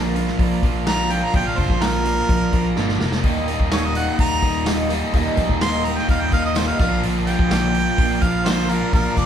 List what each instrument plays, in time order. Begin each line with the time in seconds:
Already playing: picked electric bass A#1, steel-string acoustic guitar A#2 D3 F3 A#3 D4 A#4, overdriven electric guitar A#2 F3 A#3 D4 F4, tonewheel organ D4 F4 A#4
0.14 steel-string acoustic guitar F3 A#3 D4 A#4, overdriven electric guitar F4, open hi-hat
0.27 snare
0.37 picked electric bass A#1, steel-string acoustic guitar F3 A#3 D4 A#4, kick, open hi-hat
0.41 overdriven electric guitar F4
0.61 picked electric bass A#1, steel-string acoustic guitar F3 A#3 D4 A#4, overdriven electric guitar F4, kick, open hi-hat
0.66 overdriven electric guitar A#2
0.85 steel-string acoustic guitar A#2 D3 F3 A#3 D4 A#4, harmonica A#5, snare, open hi-hat
0.90 overdriven electric guitar F4
1.09 overdriven electric guitar A#2 F4, steel-string acoustic guitar F3 A#3 D4 A#4, harmonica G5, open hi-hat
1.24 harmonica A#5
1.32 picked electric bass A#1, steel-string acoustic guitar A#2 D3 F3 A#3 D4 A#4, kick, open hi-hat
1.36 overdriven electric guitar F4, harmonica G5
1.47 harmonica F5
1.56 picked electric bass F1, steel-string acoustic guitar F3 A#3 D4 A#4, overdriven electric guitar F4, harmonica C5, kick, open hi-hat
1.70 picked electric bass A#1, kick
1.80 steel-string acoustic guitar A#2 D3 F3 A#3 D4 A#4, overdriven electric guitar F4, harmonica A#4, snare, open hi-hat
2.03 steel-string acoustic guitar F3 A#3 D4 A#4, overdriven electric guitar F4, open hi-hat
2.27 picked electric bass A#1, steel-string acoustic guitar F3 A#3 D4 A#4, kick, open hi-hat
2.32 overdriven electric guitar F4
2.51 picked electric bass A#1, steel-string acoustic guitar F3 A#3 D4 A#4, overdriven electric guitar F4, kick, open hi-hat
2.56 overdriven electric guitar A#2
2.75 picked electric bass G1, steel-string acoustic guitar A#2 D3 F3 A#3 D4 A#4, overdriven electric guitar F4, snare
2.89 snare
2.99 picked electric bass F1, steel-string acoustic guitar F3 A#3 D4 A#4, overdriven electric guitar F4, snare
3.12 snare
3.23 picked electric bass D#1, overdriven electric guitar D#2 A#2, steel-string acoustic guitar D#3 G3 A#3 D#4 A#4, tonewheel organ D#4 G4 A#4, kick, open hi-hat, tambourine
3.47 overdriven electric guitar D#3 G3, steel-string acoustic guitar D#4 A#4, open hi-hat, tambourine
3.51 steel-string acoustic guitar A#3
3.59 picked electric bass D#1, kick
3.70 overdriven electric guitar D#2 A#2, steel-string acoustic guitar D#3 G3 A#3 D#4 A#4, harmonica C#5, snare, open hi-hat, tambourine
3.85 harmonica D#5
3.95 overdriven electric guitar D#3 G3, steel-string acoustic guitar A#3 D#4 A#4, harmonica F#5, open hi-hat, tambourine
4.18 picked electric bass D#1, overdriven electric guitar D#3, steel-string acoustic guitar G3 A#3 D#4 A#4, harmonica A#5, kick, open hi-hat, tambourine
4.42 picked electric bass D#1, overdriven electric guitar D#2 A#2 D#3 G3, steel-string acoustic guitar A#3 D#4 A#4, kick, open hi-hat, tambourine
4.65 steel-string acoustic guitar D#3 G3 A#3 D#4 A#4, snare, open hi-hat, tambourine
4.89 overdriven electric guitar D#2 A#2 D#3 G3, steel-string acoustic guitar A#3 D#4 A#4, open hi-hat, tambourine
5.13 picked electric bass D#1, overdriven electric guitar D#2 A#2, steel-string acoustic guitar D#3 G3 A#3 D#4 A#4, kick, open hi-hat, tambourine
5.36 picked electric bass A#1, overdriven electric guitar D#3 G3, steel-string acoustic guitar A#3 D#4 A#4, kick, open hi-hat, tambourine
5.49 picked electric bass D#1, kick
5.59 overdriven electric guitar D#2 A#2, steel-string acoustic guitar D#3 G3 A#3 D#4 A#4, harmonica C6, snare, open hi-hat, tambourine
5.83 overdriven electric guitar D#3 G3 A#3 D#4, steel-string acoustic guitar A#4, harmonica A#5, open hi-hat, tambourine
5.88 steel-string acoustic guitar A#3
5.97 harmonica G5, snare
6.08 picked electric bass D#1, overdriven electric guitar D#3, steel-string acoustic guitar G3 A#3 D#4 A#4, harmonica F5, kick, open hi-hat, tambourine
6.21 harmonica G5
6.32 picked electric bass D#1, overdriven electric guitar D#2 A#2 D#3 G3, steel-string acoustic guitar A#3 D#4 A#4, harmonica F5, kick, open hi-hat, tambourine
6.45 harmonica D#5
6.55 steel-string acoustic guitar D#3 G3 A#3 D#4 A#4, harmonica C5, snare, open hi-hat, tambourine
6.67 harmonica F5
6.77 picked electric bass A#1, overdriven electric guitar A#2 F3 A#3 F4, tonewheel organ D4 F4 A#4, steel-string acoustic guitar A#4, harmonica F5, kick, open hi-hat, tambourine
6.81 steel-string acoustic guitar F3 A#3 D4, overdriven electric guitar F4
7.03 picked electric bass A#1, steel-string acoustic guitar A#2 D3 F3 A#3 D4 A#4, overdriven electric guitar F4, open hi-hat, tambourine
7.25 steel-string acoustic guitar A#3 D4 A#4, overdriven electric guitar F4, harmonica G5, open hi-hat, tambourine
7.30 steel-string acoustic guitar F3
7.39 picked electric bass A#1, kick
7.50 steel-string acoustic guitar A#2 D3 F3 A#3 D4 A#4, overdriven electric guitar F4, snare, open hi-hat, tambourine
7.73 steel-string acoustic guitar D4 A#4, overdriven electric guitar F4, open hi-hat, tambourine
7.77 steel-string acoustic guitar F3 A#3
7.98 picked electric bass A#1, steel-string acoustic guitar F3 A#3 D4, overdriven electric guitar F4, kick, open hi-hat, tambourine
8.02 steel-string acoustic guitar A#4
8.21 picked electric bass A#1, overdriven electric guitar A#2 F4, steel-string acoustic guitar D4 A#4, harmonica F5, kick, open hi-hat, tambourine
8.25 steel-string acoustic guitar F3 A#3
8.45 steel-string acoustic guitar A#2 D3 F3 A#3 D4 A#4, overdriven electric guitar F4, harmonica C5, snare, open hi-hat, tambourine
8.67 overdriven electric guitar A#2 F4, steel-string acoustic guitar A#3 D4 A#4, harmonica A#4, open hi-hat, tambourine
8.72 steel-string acoustic guitar F3
8.92 picked electric bass A#1, steel-string acoustic guitar A#2 D3 F3 A#3 D4 A#4, overdriven electric guitar F4, harmonica A#4, kick, open hi-hat, tambourine
9.15 picked electric bass F1, steel-string acoustic guitar A#3 D4, overdriven electric guitar F4, harmonica D5, kick, open hi-hat, tambourine